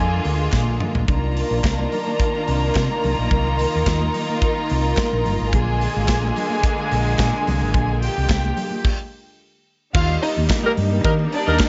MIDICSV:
0, 0, Header, 1, 6, 480
1, 0, Start_track
1, 0, Tempo, 553506
1, 941, Time_signature, 4, 2, 24, 8
1, 10137, End_track
2, 0, Start_track
2, 0, Title_t, "Violin section"
2, 0, Program_c, 0, 48
2, 0, Note_on_c, 0, 68, 83
2, 0, Note_on_c, 0, 80, 102
2, 663, Note_off_c, 0, 80, 0
2, 664, Note_off_c, 0, 68, 0
2, 929, Note_on_c, 0, 70, 71
2, 934, Note_on_c, 0, 82, 80
2, 4754, Note_off_c, 0, 70, 0
2, 4756, Note_off_c, 0, 82, 0
2, 4784, Note_on_c, 0, 68, 77
2, 4785, Note_on_c, 0, 80, 88
2, 6913, Note_off_c, 0, 68, 0
2, 6914, Note_off_c, 0, 80, 0
2, 6954, Note_on_c, 0, 67, 75
2, 6955, Note_on_c, 0, 79, 87
2, 7657, Note_off_c, 0, 67, 0
2, 7658, Note_off_c, 0, 79, 0
2, 8621, Note_on_c, 0, 65, 99
2, 8625, Note_on_c, 0, 77, 116
2, 8725, Note_off_c, 0, 65, 0
2, 8727, Note_off_c, 0, 77, 0
2, 8860, Note_on_c, 0, 63, 86
2, 8860, Note_on_c, 0, 75, 84
2, 8964, Note_off_c, 0, 63, 0
2, 8964, Note_off_c, 0, 75, 0
2, 9823, Note_on_c, 0, 62, 80
2, 9828, Note_on_c, 0, 74, 83
2, 10013, Note_off_c, 0, 62, 0
2, 10016, Note_off_c, 0, 74, 0
2, 10137, End_track
3, 0, Start_track
3, 0, Title_t, "Horn section"
3, 0, Program_c, 1, 61
3, 9226, Note_on_c, 1, 55, 96
3, 9226, Note_on_c, 1, 63, 86
3, 9230, Note_on_c, 1, 58, 100
3, 9230, Note_on_c, 1, 70, 109
3, 9299, Note_off_c, 1, 55, 0
3, 9299, Note_off_c, 1, 63, 0
3, 9302, Note_off_c, 1, 58, 0
3, 9302, Note_off_c, 1, 70, 0
3, 9575, Note_on_c, 1, 58, 92
3, 9575, Note_on_c, 1, 63, 104
3, 9575, Note_on_c, 1, 70, 100
3, 9576, Note_on_c, 1, 55, 99
3, 9657, Note_off_c, 1, 58, 0
3, 9657, Note_off_c, 1, 70, 0
3, 9658, Note_off_c, 1, 63, 0
3, 9659, Note_off_c, 1, 55, 0
3, 9943, Note_on_c, 1, 55, 79
3, 9945, Note_on_c, 1, 58, 88
3, 9945, Note_on_c, 1, 70, 96
3, 9946, Note_on_c, 1, 63, 90
3, 10096, Note_off_c, 1, 55, 0
3, 10098, Note_off_c, 1, 58, 0
3, 10098, Note_off_c, 1, 70, 0
3, 10099, Note_off_c, 1, 63, 0
3, 10137, End_track
4, 0, Start_track
4, 0, Title_t, "String section"
4, 0, Program_c, 2, 48
4, 0, Note_on_c, 2, 50, 81
4, 0, Note_on_c, 2, 56, 74
4, 0, Note_on_c, 2, 58, 68
4, 0, Note_on_c, 2, 65, 81
4, 904, Note_off_c, 2, 56, 0
4, 921, Note_off_c, 2, 58, 0
4, 921, Note_off_c, 2, 65, 0
4, 922, Note_off_c, 2, 50, 0
4, 941, Note_on_c, 2, 51, 66
4, 946, Note_on_c, 2, 62, 59
4, 946, Note_on_c, 2, 65, 76
4, 947, Note_on_c, 2, 58, 71
4, 2853, Note_off_c, 2, 62, 0
4, 2872, Note_on_c, 2, 63, 64
4, 4760, Note_off_c, 2, 51, 0
4, 4763, Note_off_c, 2, 58, 0
4, 4776, Note_off_c, 2, 63, 0
4, 4781, Note_on_c, 2, 58, 68
4, 4783, Note_on_c, 2, 50, 78
4, 4785, Note_on_c, 2, 56, 78
4, 7636, Note_off_c, 2, 58, 0
4, 7637, Note_off_c, 2, 50, 0
4, 7638, Note_off_c, 2, 56, 0
4, 7639, Note_off_c, 2, 65, 0
4, 8624, Note_on_c, 2, 55, 75
4, 8624, Note_on_c, 2, 63, 88
4, 8625, Note_on_c, 2, 62, 81
4, 8626, Note_on_c, 2, 58, 68
4, 10137, Note_off_c, 2, 55, 0
4, 10137, Note_off_c, 2, 58, 0
4, 10137, Note_off_c, 2, 62, 0
4, 10137, Note_off_c, 2, 63, 0
4, 10137, End_track
5, 0, Start_track
5, 0, Title_t, "Fingered electric bass"
5, 0, Program_c, 3, 33
5, 0, Note_on_c, 3, 41, 79
5, 164, Note_off_c, 3, 41, 0
5, 219, Note_on_c, 3, 38, 85
5, 404, Note_off_c, 3, 38, 0
5, 461, Note_on_c, 3, 46, 102
5, 558, Note_off_c, 3, 46, 0
5, 587, Note_on_c, 3, 34, 93
5, 674, Note_off_c, 3, 34, 0
5, 825, Note_on_c, 3, 34, 88
5, 913, Note_off_c, 3, 34, 0
5, 942, Note_on_c, 3, 36, 108
5, 1226, Note_off_c, 3, 36, 0
5, 1307, Note_on_c, 3, 34, 72
5, 1396, Note_off_c, 3, 34, 0
5, 1426, Note_on_c, 3, 36, 76
5, 1610, Note_off_c, 3, 36, 0
5, 2155, Note_on_c, 3, 36, 88
5, 2337, Note_off_c, 3, 36, 0
5, 2394, Note_on_c, 3, 48, 96
5, 2490, Note_off_c, 3, 48, 0
5, 2636, Note_on_c, 3, 36, 92
5, 2732, Note_off_c, 3, 36, 0
5, 2764, Note_on_c, 3, 34, 90
5, 2848, Note_off_c, 3, 34, 0
5, 2876, Note_on_c, 3, 36, 95
5, 3157, Note_off_c, 3, 36, 0
5, 3256, Note_on_c, 3, 39, 72
5, 3336, Note_off_c, 3, 39, 0
5, 3354, Note_on_c, 3, 39, 81
5, 3538, Note_off_c, 3, 39, 0
5, 4087, Note_on_c, 3, 36, 92
5, 4267, Note_off_c, 3, 36, 0
5, 4449, Note_on_c, 3, 34, 80
5, 4533, Note_off_c, 3, 34, 0
5, 4568, Note_on_c, 3, 31, 83
5, 4660, Note_off_c, 3, 31, 0
5, 4695, Note_on_c, 3, 32, 87
5, 4777, Note_off_c, 3, 32, 0
5, 4798, Note_on_c, 3, 34, 114
5, 5080, Note_off_c, 3, 34, 0
5, 5172, Note_on_c, 3, 32, 89
5, 5255, Note_off_c, 3, 32, 0
5, 5278, Note_on_c, 3, 34, 83
5, 5462, Note_off_c, 3, 34, 0
5, 6003, Note_on_c, 3, 34, 98
5, 6184, Note_off_c, 3, 34, 0
5, 6238, Note_on_c, 3, 46, 104
5, 6334, Note_off_c, 3, 46, 0
5, 6486, Note_on_c, 3, 36, 82
5, 6579, Note_off_c, 3, 36, 0
5, 6602, Note_on_c, 3, 32, 87
5, 6688, Note_off_c, 3, 32, 0
5, 6717, Note_on_c, 3, 34, 116
5, 6998, Note_off_c, 3, 34, 0
5, 7091, Note_on_c, 3, 36, 82
5, 7173, Note_off_c, 3, 36, 0
5, 7196, Note_on_c, 3, 36, 86
5, 7379, Note_off_c, 3, 36, 0
5, 8628, Note_on_c, 3, 39, 116
5, 8812, Note_off_c, 3, 39, 0
5, 8999, Note_on_c, 3, 39, 75
5, 9083, Note_off_c, 3, 39, 0
5, 9345, Note_on_c, 3, 43, 82
5, 9528, Note_off_c, 3, 43, 0
5, 9583, Note_on_c, 3, 51, 99
5, 9766, Note_off_c, 3, 51, 0
5, 9951, Note_on_c, 3, 39, 83
5, 10036, Note_off_c, 3, 39, 0
5, 10137, End_track
6, 0, Start_track
6, 0, Title_t, "Drums"
6, 215, Note_on_c, 9, 46, 60
6, 301, Note_off_c, 9, 46, 0
6, 454, Note_on_c, 9, 39, 88
6, 455, Note_on_c, 9, 63, 50
6, 457, Note_on_c, 9, 36, 102
6, 464, Note_on_c, 9, 38, 58
6, 541, Note_off_c, 9, 39, 0
6, 542, Note_off_c, 9, 63, 0
6, 544, Note_off_c, 9, 36, 0
6, 550, Note_off_c, 9, 38, 0
6, 595, Note_on_c, 9, 62, 32
6, 682, Note_off_c, 9, 62, 0
6, 697, Note_on_c, 9, 45, 76
6, 708, Note_on_c, 9, 63, 69
6, 708, Note_on_c, 9, 64, 68
6, 784, Note_off_c, 9, 45, 0
6, 795, Note_off_c, 9, 63, 0
6, 795, Note_off_c, 9, 64, 0
6, 824, Note_on_c, 9, 43, 85
6, 911, Note_off_c, 9, 43, 0
6, 939, Note_on_c, 9, 36, 94
6, 940, Note_on_c, 9, 62, 32
6, 940, Note_on_c, 9, 64, 65
6, 943, Note_on_c, 9, 42, 60
6, 1026, Note_off_c, 9, 36, 0
6, 1027, Note_off_c, 9, 62, 0
6, 1027, Note_off_c, 9, 64, 0
6, 1030, Note_off_c, 9, 42, 0
6, 1072, Note_on_c, 9, 62, 31
6, 1159, Note_off_c, 9, 62, 0
6, 1185, Note_on_c, 9, 46, 65
6, 1271, Note_off_c, 9, 46, 0
6, 1421, Note_on_c, 9, 36, 106
6, 1423, Note_on_c, 9, 62, 33
6, 1424, Note_on_c, 9, 39, 79
6, 1430, Note_on_c, 9, 42, 79
6, 1434, Note_on_c, 9, 38, 106
6, 1508, Note_off_c, 9, 36, 0
6, 1510, Note_off_c, 9, 62, 0
6, 1511, Note_off_c, 9, 39, 0
6, 1516, Note_off_c, 9, 42, 0
6, 1521, Note_off_c, 9, 38, 0
6, 1557, Note_on_c, 9, 63, 72
6, 1643, Note_off_c, 9, 63, 0
6, 1665, Note_on_c, 9, 46, 61
6, 1672, Note_on_c, 9, 64, 57
6, 1752, Note_off_c, 9, 46, 0
6, 1759, Note_off_c, 9, 64, 0
6, 1795, Note_on_c, 9, 63, 66
6, 1882, Note_off_c, 9, 63, 0
6, 1905, Note_on_c, 9, 36, 102
6, 1913, Note_on_c, 9, 42, 75
6, 1991, Note_off_c, 9, 36, 0
6, 2000, Note_off_c, 9, 42, 0
6, 2039, Note_on_c, 9, 62, 37
6, 2126, Note_off_c, 9, 62, 0
6, 2148, Note_on_c, 9, 46, 66
6, 2234, Note_off_c, 9, 46, 0
6, 2384, Note_on_c, 9, 39, 89
6, 2386, Note_on_c, 9, 42, 69
6, 2388, Note_on_c, 9, 63, 60
6, 2389, Note_on_c, 9, 36, 106
6, 2396, Note_on_c, 9, 38, 110
6, 2471, Note_off_c, 9, 39, 0
6, 2473, Note_off_c, 9, 42, 0
6, 2475, Note_off_c, 9, 63, 0
6, 2476, Note_off_c, 9, 36, 0
6, 2483, Note_off_c, 9, 38, 0
6, 2520, Note_on_c, 9, 62, 33
6, 2607, Note_off_c, 9, 62, 0
6, 2634, Note_on_c, 9, 46, 57
6, 2635, Note_on_c, 9, 63, 67
6, 2635, Note_on_c, 9, 64, 71
6, 2720, Note_off_c, 9, 46, 0
6, 2722, Note_off_c, 9, 63, 0
6, 2722, Note_off_c, 9, 64, 0
6, 2868, Note_on_c, 9, 64, 75
6, 2871, Note_on_c, 9, 36, 101
6, 2872, Note_on_c, 9, 42, 60
6, 2955, Note_off_c, 9, 64, 0
6, 2957, Note_off_c, 9, 36, 0
6, 2959, Note_off_c, 9, 42, 0
6, 2997, Note_on_c, 9, 62, 29
6, 3083, Note_off_c, 9, 62, 0
6, 3114, Note_on_c, 9, 46, 69
6, 3201, Note_off_c, 9, 46, 0
6, 3351, Note_on_c, 9, 36, 98
6, 3356, Note_on_c, 9, 39, 79
6, 3357, Note_on_c, 9, 42, 79
6, 3361, Note_on_c, 9, 38, 106
6, 3437, Note_off_c, 9, 36, 0
6, 3443, Note_off_c, 9, 39, 0
6, 3443, Note_off_c, 9, 42, 0
6, 3448, Note_off_c, 9, 38, 0
6, 3478, Note_on_c, 9, 62, 36
6, 3478, Note_on_c, 9, 63, 72
6, 3565, Note_off_c, 9, 62, 0
6, 3565, Note_off_c, 9, 63, 0
6, 3592, Note_on_c, 9, 46, 67
6, 3596, Note_on_c, 9, 64, 62
6, 3678, Note_off_c, 9, 46, 0
6, 3683, Note_off_c, 9, 64, 0
6, 3723, Note_on_c, 9, 63, 69
6, 3810, Note_off_c, 9, 63, 0
6, 3832, Note_on_c, 9, 36, 113
6, 3835, Note_on_c, 9, 42, 74
6, 3842, Note_on_c, 9, 62, 35
6, 3918, Note_off_c, 9, 36, 0
6, 3922, Note_off_c, 9, 42, 0
6, 3929, Note_off_c, 9, 62, 0
6, 3968, Note_on_c, 9, 62, 40
6, 4055, Note_off_c, 9, 62, 0
6, 4071, Note_on_c, 9, 46, 68
6, 4158, Note_off_c, 9, 46, 0
6, 4306, Note_on_c, 9, 63, 56
6, 4309, Note_on_c, 9, 42, 67
6, 4311, Note_on_c, 9, 39, 86
6, 4314, Note_on_c, 9, 36, 114
6, 4319, Note_on_c, 9, 38, 115
6, 4393, Note_off_c, 9, 63, 0
6, 4396, Note_off_c, 9, 42, 0
6, 4398, Note_off_c, 9, 39, 0
6, 4400, Note_off_c, 9, 36, 0
6, 4406, Note_off_c, 9, 38, 0
6, 4558, Note_on_c, 9, 46, 52
6, 4559, Note_on_c, 9, 63, 61
6, 4559, Note_on_c, 9, 64, 71
6, 4644, Note_off_c, 9, 46, 0
6, 4645, Note_off_c, 9, 63, 0
6, 4645, Note_off_c, 9, 64, 0
6, 4789, Note_on_c, 9, 62, 31
6, 4789, Note_on_c, 9, 64, 75
6, 4794, Note_on_c, 9, 36, 103
6, 4796, Note_on_c, 9, 42, 63
6, 4876, Note_off_c, 9, 62, 0
6, 4876, Note_off_c, 9, 64, 0
6, 4881, Note_off_c, 9, 36, 0
6, 4883, Note_off_c, 9, 42, 0
6, 5040, Note_on_c, 9, 46, 68
6, 5127, Note_off_c, 9, 46, 0
6, 5272, Note_on_c, 9, 62, 32
6, 5274, Note_on_c, 9, 36, 102
6, 5274, Note_on_c, 9, 39, 83
6, 5278, Note_on_c, 9, 42, 91
6, 5283, Note_on_c, 9, 38, 110
6, 5359, Note_off_c, 9, 62, 0
6, 5361, Note_off_c, 9, 36, 0
6, 5361, Note_off_c, 9, 39, 0
6, 5365, Note_off_c, 9, 42, 0
6, 5369, Note_off_c, 9, 38, 0
6, 5404, Note_on_c, 9, 63, 75
6, 5491, Note_off_c, 9, 63, 0
6, 5517, Note_on_c, 9, 64, 62
6, 5520, Note_on_c, 9, 46, 59
6, 5604, Note_off_c, 9, 64, 0
6, 5607, Note_off_c, 9, 46, 0
6, 5637, Note_on_c, 9, 63, 66
6, 5724, Note_off_c, 9, 63, 0
6, 5754, Note_on_c, 9, 36, 122
6, 5761, Note_on_c, 9, 42, 75
6, 5841, Note_off_c, 9, 36, 0
6, 5848, Note_off_c, 9, 42, 0
6, 5880, Note_on_c, 9, 62, 45
6, 5967, Note_off_c, 9, 62, 0
6, 5996, Note_on_c, 9, 46, 64
6, 6083, Note_off_c, 9, 46, 0
6, 6227, Note_on_c, 9, 62, 26
6, 6227, Note_on_c, 9, 63, 56
6, 6233, Note_on_c, 9, 42, 74
6, 6234, Note_on_c, 9, 39, 94
6, 6236, Note_on_c, 9, 36, 116
6, 6243, Note_on_c, 9, 38, 115
6, 6314, Note_off_c, 9, 62, 0
6, 6314, Note_off_c, 9, 63, 0
6, 6320, Note_off_c, 9, 42, 0
6, 6321, Note_off_c, 9, 39, 0
6, 6323, Note_off_c, 9, 36, 0
6, 6330, Note_off_c, 9, 38, 0
6, 6361, Note_on_c, 9, 62, 34
6, 6448, Note_off_c, 9, 62, 0
6, 6480, Note_on_c, 9, 46, 59
6, 6480, Note_on_c, 9, 63, 74
6, 6480, Note_on_c, 9, 64, 69
6, 6566, Note_off_c, 9, 63, 0
6, 6566, Note_off_c, 9, 64, 0
6, 6567, Note_off_c, 9, 46, 0
6, 6709, Note_on_c, 9, 64, 82
6, 6714, Note_on_c, 9, 36, 107
6, 6716, Note_on_c, 9, 42, 71
6, 6796, Note_off_c, 9, 64, 0
6, 6801, Note_off_c, 9, 36, 0
6, 6803, Note_off_c, 9, 42, 0
6, 6837, Note_on_c, 9, 62, 33
6, 6923, Note_off_c, 9, 62, 0
6, 6958, Note_on_c, 9, 46, 72
6, 7045, Note_off_c, 9, 46, 0
6, 7187, Note_on_c, 9, 62, 38
6, 7192, Note_on_c, 9, 36, 102
6, 7194, Note_on_c, 9, 39, 84
6, 7200, Note_on_c, 9, 42, 82
6, 7204, Note_on_c, 9, 38, 113
6, 7274, Note_off_c, 9, 62, 0
6, 7279, Note_off_c, 9, 36, 0
6, 7281, Note_off_c, 9, 39, 0
6, 7287, Note_off_c, 9, 42, 0
6, 7291, Note_off_c, 9, 38, 0
6, 7317, Note_on_c, 9, 62, 33
6, 7317, Note_on_c, 9, 63, 67
6, 7403, Note_off_c, 9, 62, 0
6, 7403, Note_off_c, 9, 63, 0
6, 7430, Note_on_c, 9, 64, 74
6, 7433, Note_on_c, 9, 46, 66
6, 7517, Note_off_c, 9, 64, 0
6, 7520, Note_off_c, 9, 46, 0
6, 7553, Note_on_c, 9, 63, 66
6, 7639, Note_off_c, 9, 63, 0
6, 7671, Note_on_c, 9, 49, 88
6, 7672, Note_on_c, 9, 36, 118
6, 7758, Note_off_c, 9, 36, 0
6, 7758, Note_off_c, 9, 49, 0
6, 8622, Note_on_c, 9, 62, 38
6, 8625, Note_on_c, 9, 49, 96
6, 8626, Note_on_c, 9, 36, 123
6, 8709, Note_off_c, 9, 62, 0
6, 8712, Note_off_c, 9, 36, 0
6, 8712, Note_off_c, 9, 49, 0
6, 8747, Note_on_c, 9, 62, 33
6, 8834, Note_off_c, 9, 62, 0
6, 8870, Note_on_c, 9, 46, 74
6, 8957, Note_off_c, 9, 46, 0
6, 8990, Note_on_c, 9, 63, 55
6, 9077, Note_off_c, 9, 63, 0
6, 9095, Note_on_c, 9, 62, 38
6, 9102, Note_on_c, 9, 36, 112
6, 9103, Note_on_c, 9, 39, 82
6, 9107, Note_on_c, 9, 42, 89
6, 9111, Note_on_c, 9, 38, 112
6, 9182, Note_off_c, 9, 62, 0
6, 9189, Note_off_c, 9, 36, 0
6, 9190, Note_off_c, 9, 39, 0
6, 9194, Note_off_c, 9, 42, 0
6, 9198, Note_off_c, 9, 38, 0
6, 9226, Note_on_c, 9, 62, 34
6, 9226, Note_on_c, 9, 63, 74
6, 9313, Note_off_c, 9, 62, 0
6, 9313, Note_off_c, 9, 63, 0
6, 9341, Note_on_c, 9, 46, 61
6, 9341, Note_on_c, 9, 64, 64
6, 9427, Note_off_c, 9, 64, 0
6, 9428, Note_off_c, 9, 46, 0
6, 9465, Note_on_c, 9, 63, 74
6, 9551, Note_off_c, 9, 63, 0
6, 9578, Note_on_c, 9, 36, 115
6, 9583, Note_on_c, 9, 42, 74
6, 9583, Note_on_c, 9, 62, 37
6, 9665, Note_off_c, 9, 36, 0
6, 9669, Note_off_c, 9, 62, 0
6, 9670, Note_off_c, 9, 42, 0
6, 9704, Note_on_c, 9, 62, 43
6, 9791, Note_off_c, 9, 62, 0
6, 9819, Note_on_c, 9, 46, 63
6, 9906, Note_off_c, 9, 46, 0
6, 10050, Note_on_c, 9, 62, 26
6, 10050, Note_on_c, 9, 63, 57
6, 10051, Note_on_c, 9, 42, 63
6, 10053, Note_on_c, 9, 39, 98
6, 10056, Note_on_c, 9, 36, 114
6, 10061, Note_on_c, 9, 38, 119
6, 10137, Note_off_c, 9, 36, 0
6, 10137, Note_off_c, 9, 38, 0
6, 10137, Note_off_c, 9, 39, 0
6, 10137, Note_off_c, 9, 42, 0
6, 10137, Note_off_c, 9, 62, 0
6, 10137, Note_off_c, 9, 63, 0
6, 10137, End_track
0, 0, End_of_file